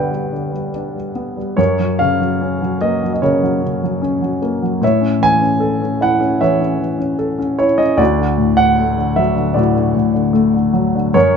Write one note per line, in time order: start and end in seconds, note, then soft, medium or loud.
0.00 1.54 G2 medium
0.00 0.32 D3 soft
0.00 0.11 G3 soft
0.00 1.12 B3 soft
0.00 0.70 D4 soft
0.00 1.60 B4 soft
0.00 1.60 D5 medium
0.00 1.61 E5 medium
0.00 1.60 F#5 medium
0.00 0.69 G5 medium
0.11 0.51 G3 soft
0.32 1.54 D3 soft
0.53 0.94 G3 soft
0.75 1.56 D4 soft
0.95 1.36 G3 soft
1.15 1.56 B3 soft
1.37 1.58 G3 soft
1.57 4.78 F#2 medium
1.57 3.18 A#4 soft
1.57 2.01 C#5 medium
1.79 2.18 F#3 soft
1.99 3.21 C#3 soft
1.99 2.77 F5 medium
2.20 2.60 F#3 soft
2.41 3.99 C#4 soft
2.62 3.01 F#3 soft
2.81 4.38 A#3 soft
2.81 3.12 D#5 medium
3.03 3.41 F#3 soft
3.13 3.21 D#5 soft
3.22 3.61 C#3 soft
3.22 4.79 A#4 soft
3.22 4.38 C#5 medium
3.43 3.82 F#3 soft
3.63 4.79 C#3 soft
3.83 4.20 F#3 soft
4.02 4.79 C#4 soft
4.22 4.61 F#3 soft
4.42 4.81 A#3 soft
4.62 4.82 F#3 soft
4.81 7.95 A2 medium
4.81 6.38 C#5 medium
4.81 5.24 E5 medium
5.01 5.40 C#4 soft
5.20 6.39 E3 soft
5.20 5.98 G#5 medium
5.41 5.80 C#4 soft
5.60 7.16 A4 soft
5.82 6.18 C#4 soft
6.01 7.55 E4 soft
6.01 6.43 F#5 medium
6.20 6.59 C#4 soft
6.40 6.78 E3 soft
6.40 7.57 C#5 soft
6.40 7.63 E5 medium
6.60 6.97 C#4 soft
6.79 7.95 E3 soft
6.99 7.37 C#4 soft
7.19 7.96 A4 soft
7.38 7.77 C#4 soft
7.59 7.98 E4 soft
7.59 7.80 C#5 medium
7.78 7.98 C#4 soft
7.78 7.99 D#5 medium
7.97 11.10 D2 medium
7.97 9.53 F#4 soft
7.97 8.60 D5 medium
8.18 8.55 D3 soft
8.38 9.54 A2 soft
8.56 8.96 D3 soft
8.56 9.19 F#5 medium
8.78 10.31 A3 soft
8.97 9.34 D3 soft
9.16 10.71 F#3 soft
9.16 9.57 E5 medium
9.36 9.74 D3 soft
9.54 9.93 A2 medium
9.54 11.11 F#4 soft
9.54 10.30 D5 medium
9.76 10.12 D3 soft
9.95 11.11 A2 soft
10.14 10.52 D3 soft
10.33 11.12 A3 soft
10.54 10.94 D3 soft
10.73 11.13 F#3 soft
10.95 11.15 D3 soft
11.14 11.37 F#2 medium
11.14 11.37 A#4 soft
11.14 11.37 C#5 medium